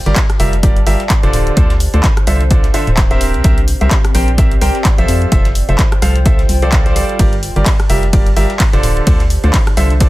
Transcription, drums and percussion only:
0.06 closed hi-hat soft
0.16 kick loud
0.16 snare loud
0.16 clap loud
0.16 closed hi-hat medium
0.16 closed hi-hat loud
0.30 cross-stick medium
0.30 closed hi-hat soft
0.40 closed hi-hat medium
0.40 open hi-hat loud
0.53 closed hi-hat soft
0.63 kick loud
0.63 closed hi-hat medium
0.63 closed hi-hat loud
0.77 closed hi-hat soft
0.87 closed hi-hat medium
0.87 open hi-hat loud
1.00 snare soft
1.00 closed hi-hat soft
1.10 kick loud
1.10 snare loud
1.10 clap loud
1.10 closed hi-hat medium
1.10 closed hi-hat loud
1.23 snare soft
1.23 closed hi-hat soft
1.33 closed hi-hat medium
1.33 open hi-hat loud
1.47 closed hi-hat soft
1.57 kick loud
1.57 closed hi-hat medium
1.57 closed hi-hat loud
1.70 snare medium
1.70 closed hi-hat soft
1.80 closed hi-hat medium
1.80 open hi-hat loud
1.94 closed hi-hat soft
2.04 kick loud
2.04 snare loud
2.04 clap loud
2.04 closed hi-hat medium
2.17 cross-stick medium
2.17 closed hi-hat soft
2.27 closed hi-hat medium
2.27 open hi-hat loud
2.41 closed hi-hat soft
2.51 kick loud
2.51 closed hi-hat medium
2.64 snare soft
2.64 closed hi-hat soft
2.74 snare soft
2.74 closed hi-hat medium
2.74 open hi-hat loud
2.87 closed hi-hat soft
2.97 kick loud
2.97 snare loud
2.97 clap loud
2.97 closed hi-hat medium
3.11 snare soft
3.11 closed hi-hat soft
3.21 closed hi-hat medium
3.21 open hi-hat loud
3.34 closed hi-hat soft
3.44 kick loud
3.44 closed hi-hat medium
3.58 closed hi-hat soft
3.68 closed hi-hat medium
3.68 open hi-hat loud
3.81 closed hi-hat soft
3.91 kick loud
3.91 snare loud
3.91 clap loud
3.91 closed hi-hat medium
4.05 cross-stick medium
4.05 closed hi-hat soft
4.15 closed hi-hat medium
4.15 open hi-hat loud
4.28 closed hi-hat soft
4.38 kick loud
4.38 closed hi-hat medium
4.51 closed hi-hat soft
4.62 closed hi-hat medium
4.62 open hi-hat loud
4.75 snare soft
4.75 closed hi-hat soft
4.85 kick loud
4.85 snare loud
4.85 clap loud
4.85 closed hi-hat loud
4.85 closed hi-hat medium
4.98 snare soft
4.98 closed hi-hat soft
5.08 closed hi-hat medium
5.08 open hi-hat loud
5.22 closed hi-hat soft
5.32 kick loud
5.32 closed hi-hat medium
5.45 snare medium
5.45 closed hi-hat soft
5.55 closed hi-hat medium
5.55 open hi-hat loud
5.69 closed hi-hat soft
5.79 kick loud
5.79 snare loud
5.79 clap loud
5.79 closed hi-hat medium
5.92 cross-stick medium
5.92 closed hi-hat soft
6.02 cross-stick medium
6.02 closed hi-hat medium
6.02 open hi-hat loud
6.16 closed hi-hat soft
6.26 kick loud
6.26 closed hi-hat medium
6.39 snare soft
6.39 closed hi-hat soft
6.49 snare soft
6.49 closed hi-hat medium
6.49 open hi-hat loud
6.62 closed hi-hat soft
6.72 kick loud
6.72 snare loud
6.72 clap loud
6.72 closed hi-hat medium
6.86 snare soft
6.86 closed hi-hat soft
6.96 closed hi-hat medium
6.96 open hi-hat loud
7.09 closed hi-hat soft
7.19 kick loud
7.19 closed hi-hat medium
7.19 ride medium
7.33 closed hi-hat soft
7.43 closed hi-hat medium
7.43 open hi-hat loud
7.56 closed hi-hat soft
7.66 kick loud
7.66 snare loud
7.66 clap loud
7.66 closed hi-hat medium
7.66 ride medium
7.80 cross-stick medium
7.80 closed hi-hat soft
7.90 closed hi-hat medium
7.90 open hi-hat loud
8.03 closed hi-hat soft
8.13 kick loud
8.13 closed hi-hat medium
8.13 ride medium
8.27 closed hi-hat soft
8.36 closed hi-hat medium
8.36 open hi-hat loud
8.50 snare soft
8.50 closed hi-hat soft
8.60 kick loud
8.60 snare loud
8.60 clap loud
8.60 closed hi-hat medium
8.60 closed hi-hat loud
8.60 ride medium
8.73 snare soft
8.73 closed hi-hat soft
8.83 closed hi-hat medium
8.83 open hi-hat loud
8.97 closed hi-hat soft
9.07 kick loud
9.07 closed hi-hat medium
9.07 ride medium
9.20 snare medium
9.20 closed hi-hat soft
9.30 closed hi-hat medium
9.30 open hi-hat loud
9.44 closed hi-hat soft
9.54 kick loud
9.54 snare loud
9.54 clap loud
9.54 closed hi-hat medium
9.54 ride medium
9.67 cross-stick medium
9.67 closed hi-hat soft
9.77 closed hi-hat medium
9.77 open hi-hat loud
9.90 closed hi-hat soft
10.00 kick loud
10.00 closed hi-hat medium
10.00 ride medium

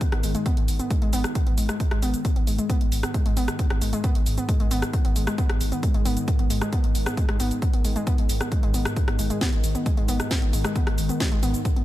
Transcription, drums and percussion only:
0.01 kick loud
0.01 closed hi-hat medium
0.01 shaker soft
0.12 cross-stick medium
0.12 closed hi-hat medium
0.23 open hi-hat loud
0.23 shaker medium
0.35 closed hi-hat medium
0.35 shaker soft
0.46 kick loud
0.46 closed hi-hat medium
0.46 shaker soft
0.57 closed hi-hat medium
0.68 open hi-hat medium
0.68 shaker medium
0.79 closed hi-hat medium
0.79 shaker soft
0.91 kick loud
0.91 closed hi-hat medium
0.91 shaker soft
1.02 closed hi-hat medium
1.13 open hi-hat loud
1.13 shaker medium
1.24 cross-stick medium
1.24 closed hi-hat soft
1.24 shaker soft
1.35 kick loud
1.35 closed hi-hat medium
1.35 shaker soft
1.47 closed hi-hat medium
1.58 open hi-hat medium
1.58 shaker medium
1.69 cross-stick medium
1.69 closed hi-hat medium
1.69 shaker soft
1.80 kick loud
1.80 closed hi-hat medium
1.80 shaker soft
1.91 cross-stick medium
1.91 closed hi-hat medium
2.02 open hi-hat loud
2.02 shaker medium
2.14 closed hi-hat medium
2.14 shaker soft
2.25 kick loud
2.25 closed hi-hat loud
2.25 shaker soft
2.36 closed hi-hat medium
2.47 open hi-hat medium
2.47 shaker medium
2.59 closed hi-hat medium
2.59 shaker soft
2.70 kick loud
2.70 closed hi-hat medium
2.70 shaker soft
2.81 closed hi-hat medium
2.92 open hi-hat loud
2.92 shaker medium
3.03 cross-stick medium
3.03 closed hi-hat medium
3.03 shaker soft
3.14 kick loud
3.14 closed hi-hat medium
3.14 shaker soft
3.26 closed hi-hat medium
3.37 open hi-hat medium
3.37 shaker medium
3.48 cross-stick medium
3.48 closed hi-hat medium
3.48 shaker soft
3.59 kick loud
3.59 closed hi-hat loud
3.59 shaker soft
3.70 cross-stick medium
3.70 closed hi-hat medium
3.81 open hi-hat loud
3.81 shaker medium
3.93 closed hi-hat medium
3.93 shaker soft
4.04 kick loud
4.04 closed hi-hat loud
4.04 shaker soft
4.15 closed hi-hat medium
4.26 open hi-hat medium
4.26 shaker medium
4.38 closed hi-hat medium
4.38 shaker soft
4.49 kick loud
4.49 closed hi-hat loud
4.49 shaker soft
4.60 closed hi-hat medium
4.71 open hi-hat loud
4.71 shaker medium
4.82 cross-stick medium
4.82 closed hi-hat medium
4.82 shaker soft
4.93 kick loud
4.93 closed hi-hat loud
4.93 shaker soft
5.05 closed hi-hat medium
5.16 open hi-hat loud
5.16 shaker medium
5.27 cross-stick loud
5.27 closed hi-hat medium
5.27 shaker soft
5.38 kick loud
5.38 closed hi-hat medium
5.38 shaker soft
5.50 cross-stick medium
5.50 closed hi-hat medium
5.61 open hi-hat loud
5.61 shaker medium
5.72 closed hi-hat medium
5.72 shaker soft
5.83 kick loud
5.83 closed hi-hat loud
5.83 shaker soft
5.94 closed hi-hat medium
6.05 open hi-hat medium
6.05 shaker medium
6.17 closed hi-hat medium
6.17 shaker soft
6.28 kick loud
6.28 closed hi-hat loud
6.28 shaker soft
6.39 closed hi-hat medium
6.50 open hi-hat loud
6.50 shaker medium
6.62 cross-stick medium
6.62 closed hi-hat soft
6.62 shaker soft
6.73 kick loud
6.73 closed hi-hat medium
6.73 shaker soft
6.84 closed hi-hat medium
6.95 open hi-hat loud
6.95 shaker medium
7.06 cross-stick loud
7.06 closed hi-hat medium
7.06 shaker soft
7.17 kick loud
7.17 closed hi-hat medium
7.17 shaker soft
7.29 cross-stick medium
7.29 closed hi-hat medium
7.40 open hi-hat loud
7.40 shaker medium
7.51 closed hi-hat medium
7.51 shaker soft
7.62 kick loud
7.62 closed hi-hat medium
7.62 shaker soft
7.73 closed hi-hat medium
7.85 open hi-hat medium
7.85 shaker medium
7.96 closed hi-hat medium
7.96 shaker soft
8.07 kick loud
8.07 closed hi-hat medium
8.07 shaker soft
8.18 closed hi-hat soft
8.29 open hi-hat loud
8.29 shaker medium
8.41 cross-stick medium
8.41 shaker soft
8.52 kick loud
8.52 closed hi-hat medium
8.52 shaker soft
8.63 closed hi-hat medium
8.74 open hi-hat loud
8.74 shaker medium
8.85 cross-stick loud
8.85 closed hi-hat medium
8.85 shaker soft
8.96 kick loud
8.96 closed hi-hat medium
8.96 shaker soft
9.08 cross-stick medium
9.08 closed hi-hat soft
9.19 open hi-hat loud
9.19 shaker medium
9.30 closed hi-hat medium
9.30 shaker soft
9.41 kick loud
9.41 snare loud
9.41 closed hi-hat medium
9.41 shaker soft
9.53 closed hi-hat soft
9.64 open hi-hat medium
9.64 shaker medium
9.75 closed hi-hat soft
9.75 shaker soft
9.86 kick loud
9.86 closed hi-hat medium
9.86 shaker soft
9.97 closed hi-hat soft
10.08 open hi-hat loud
10.08 shaker medium
10.20 cross-stick medium
10.20 closed hi-hat soft
10.20 shaker soft
10.31 kick loud
10.31 snare loud
10.31 closed hi-hat medium
10.31 shaker soft
10.42 closed hi-hat medium
10.53 open hi-hat medium
10.53 shaker medium
10.64 cross-stick loud
10.64 closed hi-hat medium
10.64 shaker soft
10.76 kick loud
10.76 closed hi-hat medium
10.76 shaker soft
10.87 cross-stick medium
10.87 closed hi-hat soft
10.98 open hi-hat loud
10.98 shaker medium
11.09 closed hi-hat medium
11.09 shaker soft
11.20 kick loud
11.20 snare loud
11.20 closed hi-hat medium
11.20 shaker soft
11.32 closed hi-hat soft
11.43 open hi-hat medium
11.43 shaker medium
11.54 closed hi-hat medium
11.54 shaker soft
11.65 kick loud
11.65 closed hi-hat medium
11.65 shaker soft
11.76 closed hi-hat soft

